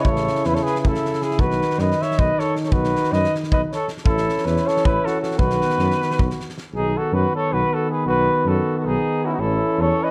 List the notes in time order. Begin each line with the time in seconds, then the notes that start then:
Already playing: C#3 E4
0.04 A1 A4 C#5, kick
0.16 snare
0.28 snare
0.35 snare
0.44 E2 E4 B4, snare
0.54 A4 C#5, snare
0.63 G#4 B4, snare
0.75 snare
0.79 G#4 B4
0.85 A1 E4 A4, kick
0.95 snare
1.05 snare
1.13 snare
1.22 E4 G#4, snare
1.31 snare
1.38 B1 D#3 D#4 F#4 B4, kick
1.51 snare
1.62 snare
1.70 snare
1.79 F#2 B4 D#5, snare
1.91 snare
2.01 C#5 E5, snare
2.11 snare
2.18 B1 B4 D#5, kick
2.39 A4 C#5, snare
2.56 snare
2.64 A4 C#5, snare
2.72 B1 F#4 B4, kick
2.84 snare
2.95 snare
3.04 snare
3.12 F#2 B4 D#5, snare
3.24 snare
3.35 snare
3.43 snare
3.52 B1 B4 D#5, kick
3.72 A4 C#5, snare
3.88 snare
3.97 snare
4.05 A1 E3 C#4 E4 A4, kick
4.17 snare
4.29 snare
4.38 snare
4.45 E2 E4 B4, snare
4.56 snare
4.66 A4 C#5, snare
4.77 snare
4.85 A1 E4 B4, kick
5.05 F#4 A4, snare
5.21 F#4 A4, snare
5.31 snare
5.38 B1 D#3 B3 F#4 B4, kick
5.50 snare
5.61 snare
5.70 snare
5.78 F#2, snare
5.91 snare
6.02 snare
6.11 snare
6.19 B1, kick
6.30 snare
6.40 snare
6.49 snare
6.58 snare
6.73 B1 D#3 B3 D#4 G#4
6.97 F#4 A4
7.12 F#2 F#4 B4
7.35 A4 C#5
7.52 B1 F#4 B4
7.73 F#4 A4
7.90 G#4 B4
8.05 B1 F#4 B4
8.45 F#2 F#4 A4
8.78 F#4 A4
8.85 B1 D#4 G#4
9.23 C#4 D#4 E4 F#4
9.32 D#4 F#4
9.38 A1 E3 C#4 E4 A4
9.78 E2 A4 C#5
10.03 B4 D#5